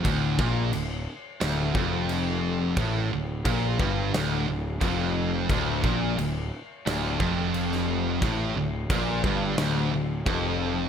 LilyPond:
<<
  \new Staff \with { instrumentName = "Distorted electric guitar" } { \clef bass \time 4/4 \key d \minor \tempo 4 = 88 d,8 bes,8 d,8 r8 d,8 f,4. | a,8 d,8 bes,8 g,8 d,8 d,8 f,4 | d,8 bes,8 d,8 r8 d,8 f,4. | a,8 d,8 bes,8 g,8 d,8 d,8 f,4 | }
  \new Staff \with { instrumentName = "Distorted electric guitar" } { \clef bass \time 4/4 \key d \minor r1 | r1 | d,8 bes,8 d,8 r8 d,8 f,4. | a,8 d,8 bes,8 g,8 d,8 d,8 f,4 | }
  \new Staff \with { instrumentName = "Overdriven electric guitar" } { \clef bass \time 4/4 \key d \minor d,8 bes,8 d,8 r8 d,8 f,4. | a,8 d,8 bes,8 g,8 d,8 d,8 f,4 | d,8 bes,8 d,8 r8 d,8 f,4. | a,8 d,8 bes,8 g,8 d,8 d,8 f,4 | }
  \new Staff \with { instrumentName = "Picked electric bass" } { \clef bass \time 4/4 \key d \minor d,,8 bes,,8 d,,8 r8 d,,8 f,,4. | a,,8 d,,8 bes,,8 g,,8 d,,8 d,,8 f,,4 | d,,8 bes,,8 d,,8 r8 d,,8 f,,4. | a,,8 d,,8 bes,,8 g,,8 d,,8 d,,8 f,,4 | }
  \new DrumStaff \with { instrumentName = "Drums" } \drummode { \time 4/4 <cymc bd>8 bd8 cymc4 <cymc sn>8 bd8 cymc4 | <cymc bd>4 <cymc bd>8 bd8 <cymc sn>4 <cymc bd>4 | <cymc bd>8 bd8 cymc4 <cymc sn>8 bd8 cymc16 sn8. | <cymc bd>4 <cymc bd>8 bd8 <cymc sn>4 <cymc bd>4 | }
>>